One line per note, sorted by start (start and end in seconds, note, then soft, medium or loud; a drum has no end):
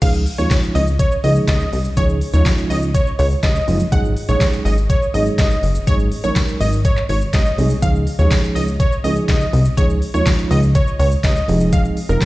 0.02 0.26 C#2 loud
0.02 0.22 F3 medium
0.02 0.22 G#3 medium
0.02 0.22 C#4 medium
0.02 0.22 D#4 medium
0.02 0.22 G#4 medium
0.02 0.10 F5 loud
0.02 kick loud
0.02 closed hi-hat medium
0.02 crash loud
0.02 shaker medium
0.14 shaker medium
0.26 open hi-hat medium
0.26 shaker medium
0.38 0.47 D#2 medium
0.38 0.85 F3 medium
0.38 0.85 G#3 medium
0.38 0.85 C#4 medium
0.38 0.85 D#4 medium
0.38 0.86 F4 medium
0.38 0.56 C#5 medium
0.38 shaker medium
0.51 kick loud
0.51 snare loud
0.51 clap loud
0.51 closed hi-hat medium
0.51 tambourine loud
0.51 shaker medium
0.63 shaker medium
0.75 0.99 C#2 loud
0.75 0.84 D#5 medium
0.75 open hi-hat medium
0.75 shaker medium
0.87 shaker medium
0.99 1.17 C#5 loud
0.99 kick loud
0.99 closed hi-hat medium
0.99 shaker medium
1.12 shaker soft
1.24 1.40 C#2 loud
1.24 1.64 F3 medium
1.24 1.64 G#3 medium
1.24 1.64 C#4 medium
1.24 1.64 D#4 medium
1.24 1.64 G#4 medium
1.24 1.32 D#5 medium
1.24 open hi-hat medium
1.24 shaker medium
1.36 shaker medium
1.48 1.64 C#2 loud
1.48 1.83 D#5 medium
1.48 kick loud
1.48 snare loud
1.48 clap loud
1.48 closed hi-hat medium
1.48 tambourine medium
1.48 shaker medium
1.61 shaker medium
1.73 1.89 C2 loud
1.73 open hi-hat medium
1.73 shaker medium
1.85 shaker medium
1.97 2.21 C#2 loud
1.97 2.17 F3 medium
1.97 2.17 G#3 medium
1.97 2.17 C#4 medium
1.97 2.17 D#4 medium
1.97 2.17 G#4 medium
1.97 2.06 C#5 loud
1.97 kick loud
1.97 closed hi-hat medium
1.97 shaker medium
2.09 shaker medium
2.21 open hi-hat medium
2.21 shaker medium
2.33 2.42 D#2 medium
2.33 2.87 F3 medium
2.33 2.87 G#3 medium
2.33 2.87 C#4 medium
2.33 2.87 D#4 medium
2.33 2.87 F4 medium
2.33 2.51 C#5 medium
2.33 shaker medium
2.46 kick loud
2.46 snare loud
2.46 clap loud
2.46 closed hi-hat medium
2.46 tambourine medium
2.46 shaker medium
2.58 shaker medium
2.70 2.94 C#2 loud
2.70 2.79 D#5 medium
2.70 open hi-hat medium
2.70 shaker medium
2.82 shaker medium
2.95 3.12 C#5 medium
2.95 kick loud
2.95 closed hi-hat medium
2.95 shaker medium
3.07 shaker medium
3.19 3.35 C#2 loud
3.19 3.28 C#5 medium
3.19 open hi-hat medium
3.19 shaker medium
3.31 shaker medium
3.43 3.59 C#2 loud
3.43 3.78 D#5 medium
3.43 kick loud
3.43 snare medium
3.43 clap loud
3.43 closed hi-hat medium
3.43 tambourine medium
3.43 shaker medium
3.56 shaker medium
3.67 3.84 F#1 loud
3.67 3.81 F3 medium
3.67 3.81 G#3 medium
3.67 3.81 C#4 medium
3.67 3.81 D#4 medium
3.67 3.81 F4 medium
3.67 open hi-hat medium
3.67 shaker medium
3.80 shaker medium
3.92 4.16 G#1 loud
3.92 4.12 F#3 medium
3.92 4.12 G#3 medium
3.92 4.12 C#4 medium
3.92 4.12 D#4 medium
3.92 4.12 G#4 medium
3.92 4.01 F#5 loud
3.92 kick loud
3.92 closed hi-hat medium
3.92 shaker medium
4.04 shaker medium
4.17 open hi-hat medium
4.17 shaker medium
4.28 4.37 A#1 medium
4.28 4.75 F#3 medium
4.28 4.76 G#3 medium
4.28 4.76 C#4 medium
4.28 4.76 D#4 medium
4.28 4.76 G#4 medium
4.28 4.46 C#5 medium
4.28 shaker medium
4.41 kick loud
4.41 snare loud
4.41 clap loud
4.41 closed hi-hat medium
4.41 tambourine medium
4.41 shaker medium
4.53 shaker medium
4.65 4.89 G#1 loud
4.65 4.74 D#5 medium
4.65 open hi-hat medium
4.65 shaker medium
4.78 shaker medium
4.90 5.07 C#5 medium
4.90 kick loud
4.90 closed hi-hat medium
4.90 shaker medium
5.02 shaker medium
5.14 5.30 G#1 medium
5.14 5.54 F#3 medium
5.14 5.54 G#3 medium
5.14 5.54 C#4 medium
5.14 5.54 D#4 medium
5.14 5.54 G#4 medium
5.14 5.23 D#5 medium
5.14 open hi-hat medium
5.14 shaker medium
5.26 shaker medium
5.38 5.55 G#1 medium
5.38 5.73 D#5 medium
5.38 kick loud
5.38 snare loud
5.38 clap loud
5.38 closed hi-hat medium
5.38 tambourine medium
5.38 shaker medium
5.51 shaker medium
5.63 5.79 F#1 loud
5.63 open hi-hat medium
5.63 shaker medium
5.75 shaker medium
5.87 6.11 G#1 loud
5.87 6.07 F#3 medium
5.87 6.07 G#3 medium
5.87 6.07 C#4 medium
5.87 6.07 D#4 medium
5.87 6.08 G#4 medium
5.87 5.96 C#5 loud
5.87 kick loud
5.87 closed hi-hat medium
5.87 shaker medium
6.00 shaker medium
6.12 open hi-hat medium
6.12 shaker medium
6.24 6.32 A#1 medium
6.24 6.77 F#3 medium
6.24 6.77 G#3 medium
6.24 6.77 C#4 medium
6.24 6.78 D#4 medium
6.24 6.78 A#4 medium
6.24 6.41 C#5 medium
6.24 shaker medium
6.36 kick loud
6.36 snare loud
6.36 clap loud
6.36 closed hi-hat medium
6.36 tambourine loud
6.36 shaker medium
6.48 shaker medium
6.61 6.84 G#1 medium
6.61 6.69 D#5 medium
6.61 open hi-hat medium
6.61 shaker medium
6.73 shaker medium
6.85 7.02 C#5 loud
6.85 kick loud
6.85 closed hi-hat medium
6.85 shaker medium
6.97 clap medium
6.97 shaker medium
7.09 7.25 G#1 loud
7.09 7.18 C#5 medium
7.09 open hi-hat medium
7.09 shaker medium
7.21 shaker medium
7.33 7.50 G#1 loud
7.33 7.68 D#5 medium
7.33 kick loud
7.33 snare loud
7.33 clap loud
7.33 closed hi-hat medium
7.33 tambourine medium
7.33 shaker medium
7.46 shaker medium
7.58 7.74 C2 loud
7.58 7.71 F#3 medium
7.58 7.71 G#3 medium
7.58 7.71 C#4 medium
7.58 7.71 D#4 medium
7.58 7.72 G#4 medium
7.58 open hi-hat medium
7.58 shaker soft
7.70 shaker medium
7.82 8.06 C#2 loud
7.82 8.02 F3 medium
7.82 8.02 G#3 medium
7.82 8.02 C#4 medium
7.82 8.02 D#4 medium
7.82 8.03 G#4 medium
7.82 7.91 F5 loud
7.82 kick loud
7.82 closed hi-hat medium
7.82 shaker medium
7.95 shaker medium
8.07 open hi-hat medium
8.07 shaker soft
8.19 8.27 D#2 medium
8.19 8.66 F3 medium
8.19 8.66 G#3 medium
8.19 8.66 C#4 medium
8.19 8.66 D#4 medium
8.19 8.66 G#4 medium
8.19 8.36 C#5 medium
8.19 shaker medium
8.31 kick loud
8.31 snare loud
8.31 clap loud
8.31 closed hi-hat medium
8.31 tambourine medium
8.31 shaker medium
8.43 shaker medium
8.55 8.80 C#2 medium
8.55 8.64 D#5 medium
8.55 open hi-hat medium
8.55 shaker medium
8.68 shaker medium
8.80 8.97 C#5 medium
8.80 kick loud
8.80 closed hi-hat medium
8.80 shaker medium
8.92 shaker medium
9.04 9.20 C#2 medium
9.04 9.44 F3 medium
9.04 9.44 G#3 medium
9.04 9.45 C#4 medium
9.04 9.45 D#4 medium
9.04 9.45 G#4 medium
9.04 9.13 D#5 medium
9.04 open hi-hat medium
9.04 shaker medium
9.16 shaker medium
9.28 9.45 C#2 loud
9.28 9.63 D#5 medium
9.28 kick loud
9.28 snare medium
9.28 clap loud
9.28 closed hi-hat medium
9.28 tambourine medium
9.28 shaker medium
9.41 shaker medium
9.53 9.69 C2 loud
9.53 open hi-hat medium
9.53 shaker medium
9.65 shaker medium
9.77 10.02 C#2 loud
9.77 9.98 F3 medium
9.77 9.98 G#3 medium
9.77 9.98 C#4 medium
9.77 9.98 D#4 medium
9.77 9.98 G#4 medium
9.77 9.86 C#5 loud
9.77 kick loud
9.77 closed hi-hat medium
9.77 shaker medium
9.90 shaker medium
10.02 open hi-hat medium
10.02 shaker medium
10.14 10.22 D#2 medium
10.14 10.68 F3 medium
10.14 10.68 G#3 medium
10.14 10.68 C#4 medium
10.14 10.68 D#4 medium
10.14 10.68 F4 medium
10.14 10.31 C#5 medium
10.14 shaker medium
10.26 kick loud
10.26 snare loud
10.26 clap loud
10.26 closed hi-hat medium
10.26 tambourine medium
10.26 shaker medium
10.39 shaker medium
10.51 10.75 C#2 loud
10.51 10.59 D#5 medium
10.51 open hi-hat medium
10.51 shaker medium
10.63 shaker medium
10.75 10.92 C#5 medium
10.75 kick loud
10.75 closed hi-hat medium
10.75 shaker medium
10.87 shaker medium
10.99 11.15 C#2 loud
10.99 11.08 C#5 medium
10.99 open hi-hat medium
10.99 shaker medium
11.12 shaker medium
11.24 11.40 C#2 loud
11.24 11.58 D#5 medium
11.24 kick loud
11.24 snare loud
11.24 clap loud
11.24 closed hi-hat medium
11.24 tambourine medium
11.24 shaker medium
11.36 shaker medium
11.48 11.88 F1 loud
11.48 11.97 F3 medium
11.48 11.97 G#3 medium
11.48 11.97 C4 medium
11.48 11.97 D#4 medium
11.48 11.97 G#4 medium
11.48 open hi-hat medium
11.48 shaker medium
11.60 shaker medium
11.73 11.81 F5 loud
11.73 kick loud
11.73 closed hi-hat medium
11.73 shaker medium
11.85 shaker medium
11.97 open hi-hat medium
11.97 shaker medium
12.09 12.17 F1 loud
12.09 12.25 F3 medium
12.09 12.25 G#3 medium
12.09 12.25 C4 medium
12.09 12.25 D#4 medium
12.09 12.25 A#4 medium
12.09 shaker medium
12.21 kick loud
12.21 snare loud
12.21 clap loud
12.21 closed hi-hat medium
12.21 tambourine medium
12.21 shaker medium